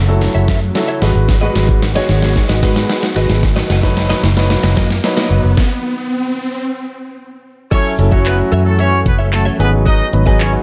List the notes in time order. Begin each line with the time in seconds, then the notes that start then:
Already playing: F#1 C#3 F#3 A3 E4 F#4, riser
0.08 F#3 E4 A4, muted clean electric guitar stroke
0.21 muted clean electric guitar stroke, snare, closed hi-hat
0.35 F#1 A4 C#5 E5
0.48 F#2 A4 C#5 E5, kick, snare, closed hi-hat
0.62 muted clean electric guitar stroke
0.75 F#3 E4 A4, muted clean electric guitar stroke, snare, closed hi-hat
0.88 A4 C#5 E5
1.01 G#1 D#3 G#3 B3 F#4 B4 D#5, snare, closed hi-hat
1.15 G#1, muted clean electric guitar stroke
1.28 muted clean electric guitar stroke, kick, snare, closed hi-hat
1.41 G#3 F#4 B4 D#5
1.55 G#1 F#4 B4 D#5, snare, closed hi-hat
1.69 muted clean electric guitar stroke, kick
1.82 muted clean electric guitar stroke, snare, closed hi-hat
1.95 G#3 F#4 B4 C#5 D#5, snare
2.09 G#1, muted clean electric guitar stroke, snare, closed hi-hat
2.22 muted clean electric guitar stroke, snare
2.36 muted clean electric guitar stroke, kick, snare, closed hi-hat
2.49 G#1 F#4 B4 D#5, snare
2.62 G#2 G#3 F#4 B4 D#5, kick, snare, closed hi-hat
2.76 muted clean electric guitar stroke, snare
2.89 muted clean electric guitar stroke, snare, closed hi-hat
3.03 muted clean electric guitar stroke, snare
3.16 G#1 G#3 F#4 B4 D#5, snare, closed hi-hat
3.29 G#1, muted clean electric guitar stroke, snare
3.43 B2 D#4, muted clean electric guitar stroke, kick, snare, closed hi-hat
3.56 F#4 B4 D#5, snare
3.70 F#1 F#4 B4 D#5, snare, closed hi-hat
3.83 F#3 D#4 B4, muted clean electric guitar stroke, kick, snare
3.96 muted clean electric guitar stroke, snare, closed hi-hat
4.10 F#4 B4 D#5, snare
4.23 F#1, muted clean electric guitar stroke, snare, closed hi-hat
4.37 F#3 D#4 B4, muted clean electric guitar stroke, snare
4.50 muted clean electric guitar stroke, snare, closed hi-hat
4.63 F#1 F#4 B4 D#5, snare
4.76 F#2 F#4 B4 D#5, kick, snare, closed hi-hat
4.90 muted clean electric guitar stroke, snare
5.04 F#3 D#4 B4, muted clean electric guitar stroke, snare, closed hi-hat
5.17 F#4 B4 D#5, snare
5.30 F#1 F#4 B4 D#5, closed hi-hat
5.44 F#1, muted clean electric guitar stroke
5.57 kick, snare
7.71 E3 F#3 A3 C#4 E4 F#4 A4 C#5 E5, kick, closed hi-hat, crash
7.98 F#1 F#3 C#4 E4 A4, muted clean electric guitar stroke, closed hi-hat
8.11 F#3 C#4 E4 F#4 A4 C#5 E5, kick
8.26 B3 B4, clap, closed hi-hat
8.39 muted clean electric guitar stroke
8.52 F#2 A4 C#5 E5, closed hi-hat
8.65 A3 A4, muted clean electric guitar stroke
8.79 C#4 A4 C#5 E5, closed hi-hat
8.92 muted clean electric guitar stroke
9.05 F#1 B3 B4, muted clean electric guitar stroke, kick, closed hi-hat
9.19 A4 C#5 E5
9.32 A3 A4, muted clean electric guitar stroke, clap, closed hi-hat
9.45 A4 C#5 E5
9.59 G#1 D#3 F#3 G#3 B3 D#4 F#4 G#4 B4 D#5, closed hi-hat
9.72 muted clean electric guitar stroke
9.86 D#4 F#4 B4 D#5, kick, closed hi-hat
10.13 G#1 F#3 B3 D#4 B4, muted clean electric guitar stroke, closed hi-hat
10.26 F#3 B3 D#4 F#4 G#4 B4 D#5, kick
10.40 C#4 C#5, clap, closed hi-hat
10.53 muted clean electric guitar stroke